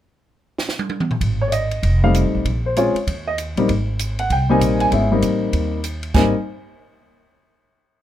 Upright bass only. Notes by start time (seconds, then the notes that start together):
1.21 G#1
1.83 F1
2.24 C2
2.35 A1
2.45 A#1
2.94 muted upright bass stroke
3.07 D#2
3.56 A#1
3.68 G#1
4.30 C2
4.59 A#1
4.91 G#1
5.22 A1
5.53 D#2
6.14 G#1